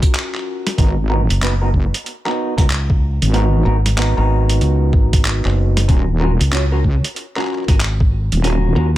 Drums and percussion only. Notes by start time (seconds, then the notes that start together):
0.02 kick, closed hi-hat
0.14 clap, closed hi-hat
0.35 clap
0.67 snare, closed hi-hat
0.78 kick, closed hi-hat
1.30 closed hi-hat
1.42 clap, closed hi-hat
1.74 kick
1.94 closed hi-hat
2.06 closed hi-hat
2.26 clap
2.58 kick, snare, closed hi-hat
2.70 clap, closed hi-hat
2.90 kick
3.22 closed hi-hat
3.34 closed hi-hat
3.86 snare, closed hi-hat
3.98 clap, closed hi-hat
4.49 closed hi-hat
4.61 closed hi-hat
4.93 kick
5.13 kick, closed hi-hat
5.25 clap, closed hi-hat
5.45 clap
5.77 snare, closed hi-hat
5.89 kick, closed hi-hat
6.41 closed hi-hat
6.53 clap, closed hi-hat
6.84 kick
7.04 closed hi-hat
7.16 closed hi-hat
7.36 clap
7.39 clap
7.42 clap
7.45 clap
7.48 clap
7.53 clap
7.58 clap
7.63 clap
7.68 kick, snare, closed hi-hat
7.80 clap, closed hi-hat
8.00 kick
8.32 closed hi-hat
8.44 closed hi-hat